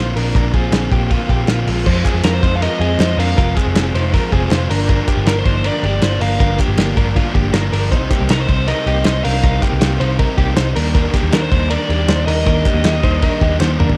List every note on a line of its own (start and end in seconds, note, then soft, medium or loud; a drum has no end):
0.00 0.12 A#1 loud
0.00 0.16 A#2 medium
0.00 0.17 D3 medium
0.00 0.17 A#3 loud
0.00 0.17 C4 loud
0.00 0.15 F4 loud
0.00 0.17 F4 medium
0.00 0.16 C5 medium
0.16 0.31 A#1 loud
0.16 0.35 A#3 soft
0.16 0.35 C4 medium
0.16 0.35 D4 medium
0.16 0.35 F4 medium
0.16 0.35 A#4 medium
0.16 open hi-hat medium
0.16 ride medium
0.35 0.50 A#1 loud
0.35 0.54 A#2 medium
0.35 0.54 D3 medium
0.35 0.54 A#3 medium
0.35 0.55 C4 loud
0.35 0.54 D4 medium
0.35 0.53 F4 loud
0.35 0.54 A#4 loud
0.35 kick loud
0.35 hi-hat pedal medium
0.35 ride medium
0.54 0.69 A#1 medium
0.54 0.73 A#3 medium
0.54 0.90 C4 medium
0.54 0.74 C4 medium
0.54 0.73 F4 medium
0.54 0.90 G#4 medium
0.54 kick medium
0.54 ride medium
0.72 0.88 A#1 loud
0.72 0.92 A#2 medium
0.72 0.92 D3 loud
0.72 0.93 A#3 loud
0.72 0.92 C4 loud
0.72 0.91 F4 medium
0.72 snare loud
0.72 clap medium
0.72 ride medium
0.92 1.15 A#1 medium
0.92 1.11 A#3 medium
0.92 1.11 A#3 soft
0.92 1.11 C4 medium
0.92 1.11 F4 medium
0.92 1.11 G4 medium
0.92 kick loud
0.92 ride medium
1.11 1.30 D3 medium
1.11 1.29 A#3 medium
1.11 1.30 A#3 medium
1.11 1.30 C4 medium
1.11 1.30 F4 medium
1.11 1.29 F4 medium
1.11 kick medium
1.11 ride medium
1.29 1.45 A#1 medium
1.29 1.48 A#3 medium
1.29 1.48 A#3 soft
1.29 1.48 C4 medium
1.29 1.49 F4 medium
1.29 1.49 G4 medium
1.29 kick medium
1.29 ride medium
1.47 1.63 A#1 medium
1.47 1.67 A#2 medium
1.47 1.67 D3 medium
1.47 1.68 A#3 medium
1.47 1.68 C4 loud
1.47 1.66 F4 medium
1.47 1.66 F4 loud
1.47 snare loud
1.47 clap medium
1.47 ride medium
1.67 1.83 A#1 loud
1.67 1.87 G#3 medium
1.67 1.87 A#3 soft
1.67 1.87 C4 medium
1.67 1.86 F4 medium
1.67 open hi-hat medium
1.67 ride medium
1.86 2.02 F2 loud
1.86 2.05 F3 loud
1.86 2.06 G#3 medium
1.86 2.05 C4 loud
1.86 2.06 F4 medium
1.86 2.04 F4 medium
1.86 2.05 C5 loud
1.86 kick loud
1.86 crash loud
2.05 2.24 G#3 medium
2.05 2.24 C4 medium
2.05 2.25 C4 medium
2.05 2.24 F4 medium
2.05 2.24 G#4 medium
2.05 kick medium
2.05 clap medium
2.05 ride medium
2.14 2.22 F2 loud
2.24 2.39 F2 loud
2.24 2.43 F3 medium
2.24 2.43 G#3 medium
2.24 2.43 C4 medium
2.24 2.43 F4 medium
2.24 2.41 F4 medium
2.24 2.43 A#4 medium
2.24 2.34 A#4 medium
2.24 snare loud
2.24 clap loud
2.24 ride medium
2.34 2.56 C5 medium
2.42 2.66 F2 loud
2.42 2.61 G#3 soft
2.42 2.62 C4 soft
2.42 2.62 D#4 medium
2.42 2.62 F4 medium
2.42 2.61 C5 medium
2.42 kick loud
2.42 ride medium
2.55 2.62 F5 medium
2.62 2.81 F3 medium
2.62 2.81 G#3 medium
2.62 2.82 C4 medium
2.62 2.81 F4 medium
2.62 2.80 F4 medium
2.62 2.80 A#4 medium
2.62 3.19 D#5 loud
2.62 snare soft
2.62 ride medium
2.80 2.96 F2 medium
2.80 3.00 C4 medium
2.80 3.01 C4 medium
2.80 3.00 F4 medium
2.80 3.00 G#4 medium
2.80 ride medium
2.85 3.00 G#3 soft
2.99 3.15 F2 loud
2.99 3.19 F3 medium
2.99 3.19 G#3 medium
2.99 3.19 C4 medium
2.99 3.19 F4 medium
2.99 3.18 C5 medium
2.99 snare loud
2.99 clap medium
2.99 ride medium
3.03 3.17 F4 medium
3.17 3.33 F2 medium
3.17 3.37 C4 soft
3.17 3.38 D4 medium
3.17 3.37 F4 medium
3.17 3.36 A#4 medium
3.17 3.54 F5 loud
3.17 open hi-hat medium
3.17 ride medium
3.21 3.37 G#3 soft
3.37 3.53 F1 loud
3.37 3.56 F3 medium
3.37 3.57 G#3 medium
3.37 3.56 C4 loud
3.37 3.57 F4 medium
3.37 3.55 F4 loud
3.37 3.56 A#4 loud
3.37 kick loud
3.37 hi-hat pedal medium
3.37 ride medium
3.56 3.75 G#3 medium
3.56 3.92 C4 medium
3.56 3.76 C4 medium
3.56 3.75 F4 medium
3.56 3.92 G#4 medium
3.56 kick medium
3.56 clap medium
3.56 ride medium
3.66 3.74 F1 loud
3.75 3.91 F1 loud
3.75 3.94 F3 medium
3.75 3.95 G#3 medium
3.75 3.95 C4 medium
3.75 3.93 F4 medium
3.75 snare loud
3.75 clap medium
3.75 ride medium
3.94 4.18 F1 loud
3.94 4.13 G#3 medium
3.94 4.14 C4 medium
3.94 4.14 D#4 medium
3.94 4.13 F4 medium
3.94 4.13 C5 medium
3.94 ride medium
4.13 4.32 F3 medium
4.13 4.33 G#3 medium
4.13 4.32 C4 medium
4.13 4.33 F4 medium
4.13 4.31 F4 loud
4.13 4.32 A#4 medium
4.13 kick loud
4.13 snare soft
4.13 ride medium
4.32 4.48 F1 loud
4.32 4.50 G#3 medium
4.32 4.51 C4 medium
4.32 4.52 C4 medium
4.32 4.51 F4 medium
4.32 4.51 G#4 medium
4.32 kick medium
4.32 ride medium
4.50 4.67 F1 medium
4.50 4.70 F3 medium
4.50 4.70 G#3 medium
4.50 4.71 C4 medium
4.50 4.71 F4 medium
4.50 4.69 F4 medium
4.50 4.70 C5 medium
4.50 snare loud
4.50 clap medium
4.50 ride medium
4.69 5.01 G1 loud
4.69 4.88 F3 medium
4.69 4.88 A#3 medium
4.69 4.89 D4 medium
4.69 4.88 A#4 loud
4.69 open hi-hat medium
4.69 ride medium
4.88 5.07 G2 loud
4.88 5.08 D3 loud
4.88 5.08 F3 medium
4.88 5.07 A#3 loud
4.88 5.06 D4 loud
4.88 5.09 D4 medium
4.88 5.08 A#4 loud
4.88 kick loud
4.88 hi-hat pedal medium
4.88 ride medium
5.07 5.26 F3 medium
5.07 5.27 A#3 medium
5.07 5.26 D4 medium
5.07 5.27 G4 medium
5.07 kick medium
5.07 clap medium
5.07 ride medium
5.17 5.25 G1 loud
5.26 5.42 G1 loud
5.26 5.45 D3 medium
5.26 5.46 F3 medium
5.26 5.46 A#3 medium
5.26 5.46 D4 medium
5.26 5.44 D4 medium
5.26 5.46 A#4 loud
5.26 5.39 A#4 medium
5.26 snare loud
5.26 clap medium
5.26 ride medium
5.39 5.67 C5 medium
5.45 5.69 G1 loud
5.45 5.64 F3 soft
5.45 5.65 A#3 medium
5.45 5.64 D4 medium
5.45 5.65 D#4 medium
5.45 5.65 C5 medium
5.45 kick loud
5.45 ride medium
5.64 5.84 G2 medium
5.64 5.84 D3 medium
5.64 5.84 F3 medium
5.64 5.84 A#3 loud
5.64 5.84 D4 medium
5.64 5.82 D4 medium
5.64 5.84 A#4 medium
5.64 6.19 D5 loud
5.64 ride medium
5.83 5.99 G1 loud
5.83 6.02 F3 soft
5.83 6.02 A#3 medium
5.83 6.03 A#3 medium
5.83 6.02 D4 medium
5.83 6.03 G4 medium
5.83 ride medium
6.02 6.18 G1 loud
6.02 6.21 D3 medium
6.02 6.22 F3 medium
6.02 6.20 A#3 medium
6.02 6.19 D4 medium
6.02 6.22 F4 medium
6.02 6.21 C5 medium
6.02 snare loud
6.02 clap medium
6.02 ride medium
6.20 6.37 G1 medium
6.20 6.40 F3 soft
6.20 6.40 A#3 medium
6.20 6.40 D4 medium
6.20 6.39 A#4 medium
6.20 6.57 F5 loud
6.20 open hi-hat medium
6.20 ride medium
6.39 6.56 G1 loud
6.39 6.59 G2 medium
6.39 6.59 D3 medium
6.39 6.60 F3 loud
6.39 6.59 A#3 medium
6.39 6.60 D4 medium
6.39 6.57 D4 loud
6.39 6.59 A#4 loud
6.39 kick loud
6.39 hi-hat pedal medium
6.39 ride medium
6.58 6.77 F3 soft
6.58 6.78 A#3 medium
6.58 6.95 A#3 medium
6.58 6.78 D4 medium
6.58 6.95 G4 medium
6.58 kick medium
6.58 clap medium
6.58 ride medium
6.68 6.76 G1 loud
6.77 6.93 G1 loud
6.77 6.97 D3 medium
6.77 6.97 F3 medium
6.77 6.96 A#3 medium
6.77 6.95 D4 medium
6.77 snare loud
6.77 clap medium
6.77 ride medium
6.96 7.20 G1 loud
6.96 7.15 F3 medium
6.96 7.15 A#3 medium
6.96 7.15 D4 medium
6.96 7.17 D4 medium
6.96 7.16 A#4 medium
6.96 kick loud
6.96 ride medium
7.15 7.35 G2 medium
7.15 7.35 D3 medium
7.15 7.35 F3 medium
7.15 7.34 A#3 loud
7.15 7.34 A#3 medium
7.15 7.33 D4 loud
7.15 7.34 F4 loud
7.15 kick loud
7.15 ride medium
7.34 7.51 G1 loud
7.34 7.52 F3 medium
7.34 7.54 A#3 medium
7.34 7.53 A#3 medium
7.34 7.54 D4 medium
7.34 7.54 G4 medium
7.34 kick medium
7.34 ride medium
7.53 7.69 G1 medium
7.53 7.72 D3 medium
7.53 7.73 F3 medium
7.53 7.73 A#3 medium
7.53 7.72 D4 medium
7.53 7.71 D4 medium
7.53 7.71 A#4 medium
7.53 snare loud
7.53 clap medium
7.53 ride medium
7.72 7.93 G1 loud
7.72 7.91 F3 medium
7.72 7.92 A#3 medium
7.72 7.92 D4 medium
7.72 7.91 A#4 medium
7.72 open hi-hat medium
7.72 ride medium
7.91 8.07 C2 loud
7.91 8.10 C3 loud
7.91 8.11 G3 medium
7.91 8.10 C4 loud
7.91 8.11 D#4 medium
7.91 8.08 D#4 loud
7.91 8.11 C5 loud
7.91 kick loud
7.91 hi-hat pedal medium
7.91 ride medium
8.10 8.29 G3 medium
8.10 8.30 A#3 medium
8.10 8.30 C4 medium
8.10 8.29 D#4 medium
8.10 8.30 G4 medium
8.10 kick medium
8.10 clap medium
8.10 ride medium
8.20 8.28 C2 loud
8.29 8.45 C2 loud
8.29 8.48 C3 medium
8.29 8.49 G3 medium
8.29 8.48 C4 medium
8.29 8.49 D#4 medium
8.29 8.46 D#4 medium
8.29 8.49 A#4 loud
8.29 8.40 A#4 medium
8.29 snare loud
8.29 clap medium
8.29 ride medium
8.41 8.69 C5 medium
8.48 8.72 C2 medium
8.48 8.67 G3 soft
8.48 8.67 C4 medium
8.48 8.67 D#4 medium
8.48 8.68 D#4 medium
8.48 8.68 C5 medium
8.48 kick loud
8.48 ride medium
8.67 8.86 C3 medium
8.67 8.87 G3 medium
8.67 8.87 C4 medium
8.67 8.87 D#4 medium
8.67 8.85 D#4 medium
8.67 8.87 A#4 medium
8.67 9.04 D#5 loud
8.67 snare soft
8.67 ride medium
8.86 9.02 C2 loud
8.86 9.05 G3 soft
8.86 9.06 A#3 medium
8.86 9.06 C4 medium
8.86 9.06 D#4 medium
8.86 9.06 G4 medium
8.86 ride medium
9.05 9.21 C2 loud
9.05 9.25 C3 medium
9.05 9.25 G3 medium
9.05 9.25 C4 medium
9.05 9.25 D#4 medium
9.05 9.23 D#4 medium
9.05 9.24 C5 medium
9.05 9.24 D#5 loud
9.05 snare loud
9.05 clap medium
9.05 ride medium
9.24 9.41 C2 loud
9.24 9.43 G3 soft
9.24 9.44 C4 medium
9.24 9.44 D4 medium
9.24 9.44 D#4 medium
9.24 9.42 A#4 medium
9.24 9.60 F5 loud
9.24 open hi-hat medium
9.24 ride medium
9.43 9.59 C2 loud
9.43 9.63 C3 medium
9.43 9.63 G3 medium
9.43 9.63 C4 loud
9.43 9.63 D#4 medium
9.43 9.61 D#4 loud
9.43 9.62 A#4 loud
9.43 kick loud
9.43 hi-hat pedal medium
9.43 ride medium
9.62 9.82 G3 medium
9.62 9.99 A#3 medium
9.62 9.82 C4 medium
9.62 9.82 D#4 medium
9.62 9.98 G4 medium
9.62 kick medium
9.62 clap medium
9.62 ride medium
9.72 9.80 C2 medium
9.81 9.97 C2 loud
9.81 10.00 C3 medium
9.81 10.01 G3 medium
9.81 10.01 C4 medium
9.81 9.99 D#4 medium
9.81 snare loud
9.81 clap loud
9.81 ride medium
10.00 10.24 C2 loud
10.00 10.18 G3 soft
10.00 10.19 C4 medium
10.00 10.20 D#4 medium
10.00 10.19 D#4 medium
10.00 10.19 C5 medium
10.00 ride medium
10.19 10.38 C3 medium
10.19 10.39 G3 loud
10.19 10.38 C4 loud
10.19 10.39 D#4 medium
10.19 10.36 D#4 loud
10.19 10.37 A#4 medium
10.19 kick loud
10.19 ride medium
10.37 10.54 C2 loud
10.37 10.57 G3 medium
10.37 10.57 A#3 medium
10.37 10.58 C4 medium
10.37 10.57 D#4 medium
10.37 10.56 G4 medium
10.37 kick medium
10.37 ride medium
10.57 10.73 C2 loud
10.57 10.76 C3 medium
10.57 10.77 G3 medium
10.57 10.77 C4 medium
10.57 10.76 D#4 medium
10.57 10.75 C5 medium
10.57 snare loud
10.57 clap medium
10.57 ride medium
10.76 11.07 D#2 loud
10.76 10.95 G3 medium
10.76 10.95 A#3 medium
10.76 10.95 D4 medium
10.76 10.94 D4 medium
10.76 10.93 A#4 loud
10.76 open hi-hat medium
10.76 ride medium
10.94 11.14 D#3 loud
10.94 11.15 G3 loud
10.94 11.14 A#3 loud
10.94 11.14 D4 medium
10.94 11.12 D4 loud
10.94 11.14 A#4 loud
10.94 kick loud
10.94 hi-hat pedal medium
10.94 ride medium
11.14 11.32 G3 medium
11.14 11.34 A#3 medium
11.14 11.33 A#3 medium
11.14 11.33 D4 medium
11.14 11.33 G4 medium
11.14 kick medium
11.14 clap medium
11.14 ride medium
11.23 11.31 D#2 loud
11.32 11.48 D#2 loud
11.32 11.52 D#3 medium
11.32 11.52 G3 medium
11.32 11.52 A#3 medium
11.32 11.52 D4 medium
11.32 11.51 D4 medium
11.32 11.51 A#4 medium
11.32 11.41 A#4 medium
11.32 snare loud
11.32 clap loud
11.32 ride medium
11.42 11.69 C5 loud
11.52 11.75 D#2 loud
11.52 11.71 G3 medium
11.52 11.71 A#3 medium
11.52 11.71 D4 medium
11.52 11.71 D#4 medium
11.52 11.70 C5 medium
11.52 kick loud
11.52 ride medium
11.70 11.90 D#3 medium
11.70 11.90 G3 medium
11.70 11.90 A#3 medium
11.70 11.90 D4 medium
11.70 11.89 D4 medium
11.70 11.90 A#4 medium
11.70 12.25 D5 loud
11.70 ride medium
11.89 12.05 D#2 loud
11.89 12.09 G3 medium
11.89 12.09 A#3 medium
11.89 12.10 A#3 medium
11.89 12.09 D4 medium
11.89 12.09 G4 medium
11.89 ride medium
12.08 12.24 D#2 loud
12.08 12.28 D#3 medium
12.08 12.28 G3 medium
12.08 12.27 A#3 medium
12.08 12.26 D4 medium
12.08 12.28 D#4 medium
12.08 12.27 C5 medium
12.08 snare loud
12.08 clap loud
12.08 ride medium
12.26 12.43 D#2 loud
12.26 12.46 A#3 medium
12.26 12.47 D4 medium
12.26 12.46 D4 medium
12.26 12.45 A#4 medium
12.26 13.56 D#5 loud
12.26 open hi-hat medium
12.26 ride medium
12.30 12.46 G3 soft
12.46 12.62 D#2 loud
12.46 12.65 D#3 medium
12.46 12.66 G3 medium
12.46 12.66 A#3 medium
12.46 12.66 D4 medium
12.46 12.64 D4 loud
12.46 12.66 A#4 loud
12.46 kick loud
12.46 hi-hat pedal medium
12.46 ride medium
12.65 12.84 G3 soft
12.65 13.02 A#3 medium
12.65 12.85 A#3 medium
12.65 12.84 D4 medium
12.65 13.01 G4 medium
12.65 kick loud
12.65 clap medium
12.65 ride medium
12.74 12.82 D#2 loud
12.84 13.00 D#2 loud
12.84 13.03 D#3 medium
12.84 13.04 G3 medium
12.84 13.03 A#3 medium
12.84 13.01 D4 medium
12.84 snare loud
12.84 clap loud
12.84 ride medium
13.02 13.27 D#2 medium
13.02 13.22 G3 medium
13.02 13.22 A#3 medium
13.02 13.22 D4 medium
13.02 13.23 D#4 medium
13.02 13.22 C5 medium
13.02 kick loud
13.02 ride medium
13.22 13.41 D#3 medium
13.22 13.42 G3 medium
13.22 13.41 A#3 loud
13.22 13.42 D4 medium
13.22 13.40 D4 loud
13.22 13.42 A#4 medium
13.22 kick medium
13.22 ride medium
13.41 13.57 D#2 loud
13.41 13.59 G3 medium
13.41 13.61 A#3 medium
13.41 13.60 A#3 medium
13.41 13.60 D4 medium
13.41 13.61 G4 medium
13.41 kick medium
13.41 ride medium
13.59 13.76 D#2 loud
13.59 13.79 D#3 medium
13.59 13.80 G3 medium
13.59 13.80 A#3 medium
13.59 13.78 D4 medium
13.59 13.80 D#4 medium
13.59 13.79 C5 medium
13.59 snare medium
13.59 clap medium
13.79 13.95 D#2 loud
13.79 13.97 G3 medium
13.79 13.97 A#3 medium
13.79 13.97 D4 medium
13.79 13.97 A#4 medium
13.79 mid tom loud
13.89 floor tom loud